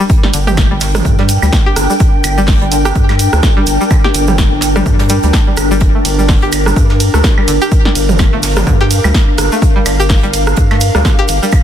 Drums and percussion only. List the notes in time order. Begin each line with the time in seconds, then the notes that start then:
0.09 kick, closed hi-hat, shaker
0.23 snare
0.33 closed hi-hat, shaker
0.47 mid tom, percussion blips, shaker
0.57 kick, snare, closed hi-hat, claves, shaker
0.80 snare, closed hi-hat, open hi-hat, shaker
0.94 cross-stick, snare, mid tom, open hi-hat, percussion blips, shaker
1.05 kick, closed hi-hat, shaker
1.19 snare, closed hi-hat
1.28 closed hi-hat, shaker
1.42 snare, claves, shaker
1.53 kick, snare, closed hi-hat, shaker
1.76 cross-stick, closed hi-hat, shaker
1.90 shaker
2.00 kick, closed hi-hat, shaker
2.24 closed hi-hat, claves, shaker
2.38 shaker
2.47 kick, snare, open hi-hat, shaker
2.62 closed hi-hat
2.71 closed hi-hat, shaker
2.85 cross-stick, shaker
2.95 kick, closed hi-hat, shaker
3.09 snare, closed hi-hat, claves
3.19 closed hi-hat, shaker
3.33 cross-stick, closed hi-hat, shaker
3.42 kick, snare, closed hi-hat, percussion blips, shaker
3.67 closed hi-hat, shaker
3.81 shaker
3.90 kick, closed hi-hat, claves, shaker
4.04 snare
4.14 closed hi-hat, shaker
4.27 mid tom, percussion blips, shaker
4.38 kick, snare, closed hi-hat, shaker
4.61 snare, closed hi-hat, shaker
4.76 cross-stick, mid tom, percussion blips, claves, shaker
4.86 kick, closed hi-hat, shaker
4.99 snare, closed hi-hat
5.09 closed hi-hat, shaker
5.23 closed hi-hat, shaker
5.33 kick, snare, closed hi-hat, shaker
5.57 cross-stick, closed hi-hat, claves, shaker
5.71 shaker
5.80 kick, closed hi-hat, shaker
6.05 closed hi-hat, ride, shaker
6.19 shaker
6.28 kick, snare, open hi-hat, shaker
6.42 closed hi-hat
6.52 closed hi-hat, ride, claves, shaker
6.66 cross-stick, shaker
6.76 kick, closed hi-hat, shaker
6.90 snare, closed hi-hat
7.00 closed hi-hat, ride, shaker
7.14 cross-stick, closed hi-hat, shaker
7.24 kick, snare, closed hi-hat, percussion blips, shaker
7.38 claves
7.48 closed hi-hat, ride, shaker
7.62 shaker
7.71 kick, closed hi-hat, shaker
7.85 snare
7.95 closed hi-hat, ride, shaker
8.09 mid tom, percussion blips, shaker
8.18 kick, snare, closed hi-hat, claves, shaker
8.43 snare, closed hi-hat, open hi-hat, ride, shaker
8.56 cross-stick, snare, mid tom, open hi-hat, percussion blips, shaker
8.67 kick, closed hi-hat, shaker
8.80 snare, closed hi-hat
8.91 closed hi-hat, ride, shaker
9.04 snare, claves, shaker
9.14 kick, snare, closed hi-hat, shaker
9.38 cross-stick, closed hi-hat, ride, shaker
9.52 shaker
9.62 kick, closed hi-hat, shaker
9.86 closed hi-hat, ride, claves, shaker
10.00 shaker
10.09 kick, snare, open hi-hat, shaker
10.23 closed hi-hat
10.33 closed hi-hat, ride, shaker
10.47 cross-stick, shaker
10.56 kick, closed hi-hat, shaker
10.71 snare, closed hi-hat, claves
10.81 closed hi-hat, ride, shaker
10.95 cross-stick, closed hi-hat, shaker
11.05 kick, snare, closed hi-hat, percussion blips, shaker
11.28 closed hi-hat, ride, shaker
11.43 shaker
11.51 kick, closed hi-hat, claves, shaker